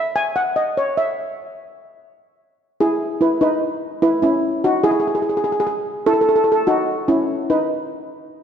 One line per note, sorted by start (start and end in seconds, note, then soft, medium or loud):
0.00 0.16 E5 medium
0.16 0.36 G#5 loud
0.36 0.57 F#5 medium
0.56 0.77 D#5 medium
0.77 0.98 C#5 medium
0.97 1.75 E5 medium
2.80 3.19 E4 medium
2.80 3.22 G#4 medium
3.21 3.42 E4 medium
3.21 3.40 B4 medium
3.41 4.04 D#4 medium
3.41 3.99 B4 medium
4.02 4.21 E4 medium
4.02 4.22 B4 medium
4.22 4.61 C#4 medium
4.22 4.65 E4 medium
4.64 4.83 D#4 medium
4.64 4.85 F#4 medium
4.84 4.91 E4 medium
4.84 4.90 G#4 loud
4.91 4.98 G#4 medium
5.00 5.06 G#4 medium
5.08 5.14 G#4 medium
5.15 5.21 G#4 medium
5.22 5.28 G#4 medium
5.29 5.36 G#4 medium
5.37 5.43 G#4 medium
5.44 5.51 G#4 medium
5.52 5.59 G#4 medium
5.60 5.66 G#4 medium
5.67 5.74 G#4 medium
6.06 6.14 E4 medium
6.06 6.12 A4 loud
6.14 6.20 A4 medium
6.21 6.28 A4 loud
6.29 6.34 A4 medium
6.36 6.43 A4 medium
6.44 6.51 A4 medium
6.52 6.59 A4 medium
6.67 7.05 D#4 medium
6.67 7.09 F#4 medium
7.08 7.46 C#4 medium
7.08 7.46 E4 medium
7.50 8.26 D#4 medium
7.50 8.26 B4 medium